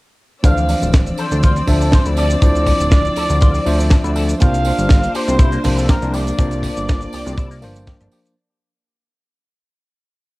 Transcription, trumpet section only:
0.44 F5
1.19 C5
1.43 C5
1.68 A4
1.93 C5
2.18 D5
2.42 D5
4.41 F5
5.15 C5
5.65 C5
5.78 A4
5.90 A#4
6.15 D5

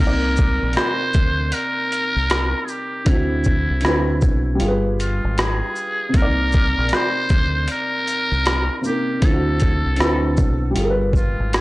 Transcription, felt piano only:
Already playing: C3
0.00 A#3 D#4
0.07 D5
3.05 D3 C4
3.09 E4 F#4
3.82 D3 C4 E4
3.86 F#4 B4
4.55 G3
4.60 F4
4.64 G#4
4.68 B4
6.09 C3
6.13 A#3
6.18 D#4
6.22 D5
8.81 C3 A#3
8.86 D#4 A#4
9.20 D3 C4
9.24 E4 F4
9.33 F#4
9.97 D3 C4 E4
10.02 F#4 B4
10.71 G3
10.75 F4
10.79 G#4
10.84 A#4
10.90 B4

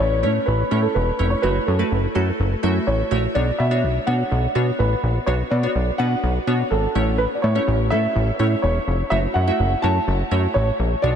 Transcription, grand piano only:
Already playing: C#5
0.46 B4
0.82 A4
0.94 B4
1.30 C#5
1.42 B4
1.66 A4
2.87 C#5
3.35 D5
3.58 E5
4.07 F#5
4.79 B4
5.26 C#5
5.51 D5
5.98 F#5
6.71 A4
7.18 B4
7.35 D5
7.42 C#5
7.90 E5
8.62 C#5
9.10 E5
9.34 F#5
9.82 A5
10.54 C#5
11.02 D5

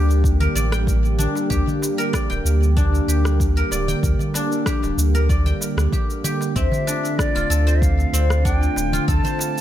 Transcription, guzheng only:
Already playing: D4 G4 A#4 D5 G5
0.40 A#4
0.55 D5
0.72 G5
1.19 D4
1.50 G4
1.98 A#4
2.13 D5
2.30 G5
2.77 D4
3.08 G4
3.57 A#4
3.72 D5
3.88 G5
4.35 D4
4.67 G4
5.15 A#4
5.30 D5
5.46 G5
5.93 G4
6.24 G4
6.56 C4
6.87 D4
7.36 F4
7.50 A4
7.67 C5
8.13 C4
8.45 D4
8.93 F4
9.08 A4
9.25 C5

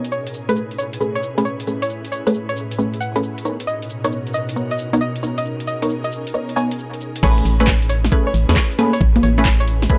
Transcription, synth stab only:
0.49 A3 C#4 G#4 B4
1.01 A3 C#4 G#4 B4
1.38 A3 C#4 G#4 B4
1.67 A3 C#4 G#4 B4
2.27 A3 C#4 G#4 B4
2.78 A3 C#4 G#4 B4
3.16 A3 C#4 G#4 B4
3.45 B3 D#4 A#4 C#5
4.04 B3 D#4 A#4 C#5
4.56 B3 D#4 A#4 C#5
4.93 B3 D#4 A#4 C#5
5.23 B3 D#4 A#4 C#5
5.82 B3 D#4 A#4 C#5
6.34 B3 D#4 A#4 C#5
6.56 B3 D#4 A#4 C#5
7.23 A3 C#4 G#4 B4
7.60 A3 C#4 G#4 B4
8.12 A3 C#4 G#4 B4
8.49 A3 C#4 G#4 B4
8.79 A3 C#4 G#4 B4
9.38 A3 C#4 G#4 B4
9.90 A3 C#4 G#4 B4

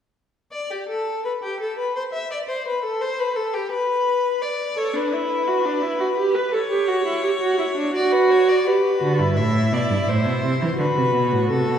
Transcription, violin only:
0.52 D5
0.71 G4
0.89 A4
1.25 B4
1.43 G4
1.60 A4
1.78 B4
1.96 C5
2.13 E5
2.31 D5
2.49 C5
2.68 B4
2.84 A4
3.01 C5
3.19 B4
3.36 A4
3.54 G4
3.71 B4
4.42 D5
4.78 C#5
4.96 B4
6.54 C#5
7.95 D5
8.12 B4
8.30 C#5
8.49 D5
8.67 B4
9.37 E5
9.74 D5
10.09 C5
10.79 B4
11.50 A4

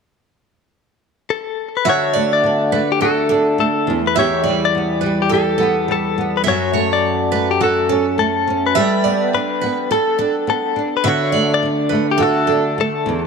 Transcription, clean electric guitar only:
1.30 A4
1.77 B4
1.90 C#5
2.33 D5
2.92 G4
3.02 A4
3.60 A4
4.07 B4
4.19 C#5
4.65 D5
5.22 G4
5.34 A4
5.92 A4
6.37 B4
6.48 C#5
6.93 D5
7.51 G4
7.63 A4
8.19 A4
8.66 B4
9.35 B4
9.92 A4
10.50 A4
10.97 B4
11.08 C#5
11.54 D5
12.11 G4
12.23 A4
12.81 A4

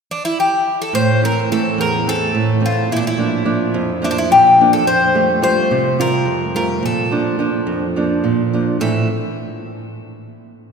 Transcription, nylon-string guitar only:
0.93 A2
1.22 E3 A3 C4
1.52 E3 A3 C4
1.78 E2
2.06 E3 A3 C4
2.35 A2
2.60 E3 A3 C4
2.91 A#2
3.17 F3 A#3 D4
3.45 F3 A#3 D4
3.74 F2
4.02 F3 A#3 D4
4.31 A#2
4.61 F3 A#3 D4
4.87 F2
5.15 G3 A3 F4
5.42 G3 A3 F4
5.71 C3
5.99 G3 C4 F4
6.25 F2
6.55 G3 A3 F4
6.83 A#2
7.11 F3 A#3 D4
7.39 F3 A#3 D4
7.67 F2
7.96 F3 A#3 D4
8.24 A#2
8.53 F3 A#3 D4
8.80 A2 E3 A3 C4 E4

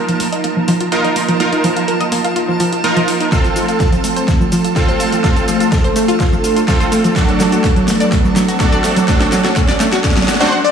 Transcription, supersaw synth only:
Already playing: D#4 F4 A#4
0.92 D#4 F4 A#4
1.40 D#4 F4 A#4
2.84 D#4 F4 A#4
3.32 C4 F4 A4
4.76 C4 F4 A4
5.24 C4 F4 A4
6.68 C4 F4 A4
7.16 D4 F#4 A4
8.60 D4 F#4 A4
9.08 D4 F#4 A4
10.41 D4 F#4 C5

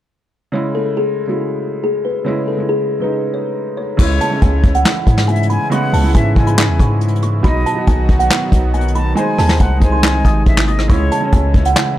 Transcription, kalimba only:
0.53 C#5
0.75 A4
0.97 G#4
1.29 F#4
1.84 G#4
2.05 B4
2.26 C#5
2.48 A4
2.69 G#4
3.02 B4
3.34 C#5
3.77 C#5
3.99 C#6
4.21 A5
4.42 G#5
4.75 F#5
5.28 G#5
5.50 B5
5.72 C#6
5.93 A5
6.15 G#5
6.47 B5
6.80 C#6
7.23 C#6
7.44 B5
7.66 A5
7.87 G#5
8.19 F#5
8.74 G#5
8.95 B5
9.17 G#5
9.38 A5
9.61 G#5
9.92 C6
10.25 D#6
10.68 D#6
10.90 C#6
11.12 A5
11.33 G#5
11.66 F#5

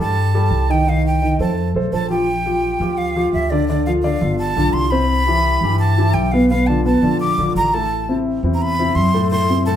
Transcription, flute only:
0.01 A5
0.71 G5
0.89 F5
1.06 G5
1.40 A5
1.93 A5
2.10 G5
2.98 F5
3.33 E5
3.50 D5
3.68 D5
3.86 F5
4.03 F5
4.39 A5
4.73 C6
4.91 B5
5.79 A5
6.14 G5
6.32 F5
6.49 F5
6.67 A5
6.85 A5
7.20 D6
7.57 A#5
7.74 A5
8.54 A#5
8.62 B5
8.95 C6
9.31 C6
9.66 A5

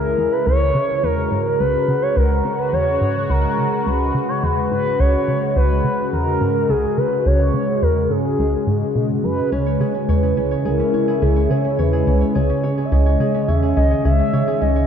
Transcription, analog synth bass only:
Already playing: C#2
0.18 E2
0.46 C#2
0.75 C#3
1.03 E2
1.31 G#2
1.60 C#2
1.88 C#3
2.16 C#2
2.44 C#3
2.73 E2
3.01 G#2
3.29 C#2
3.58 C#3
3.86 C#2
4.15 C#3
4.43 E2
4.71 G#2
5.00 C#2
5.28 C#3
5.56 C#2
5.84 C#3
6.13 E2
6.41 G#2
6.69 C#2
6.97 C#3
7.26 C#2
7.54 C#3
7.82 E2
8.10 G#2
8.39 C#2
8.67 G#2
8.95 B2
9.24 F#2
9.52 C#2
9.80 C#3
10.09 E2
10.37 C#2
10.65 C#2
10.94 C#3
11.22 C#2
11.50 C#3
11.79 E2
12.07 C#2
12.35 C#2
12.64 C#3
12.92 C#2
13.20 C#3
13.48 E2
13.77 C#2
14.05 C#2
14.33 C#3
14.61 C#2

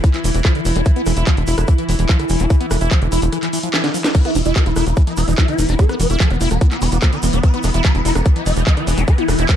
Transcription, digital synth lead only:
4.15 B4
4.25 E4
4.35 E4
4.45 E4
4.56 B4
4.66 E4
4.76 E4
4.87 E4
5.07 E4
5.17 E4
5.28 E4
5.38 E4
5.48 E4
5.59 E4
5.69 E4
5.79 A4
5.89 B3
6.00 B3
6.10 B3
6.20 A4
6.30 B3
6.41 B3
6.51 B3
6.72 B3
6.82 E4
6.92 B3
7.02 B3
7.13 E4
7.23 B3
7.33 B3
7.43 B4
7.54 E4
7.64 E4
7.74 E4
7.85 B4
7.95 E4
8.05 E4
8.15 E4
8.36 E4
8.46 E4
8.57 E4
8.67 E4
8.77 E4
8.87 E4
8.98 E4
9.08 B4
9.18 E4
9.28 E4
9.39 E4
9.49 B4

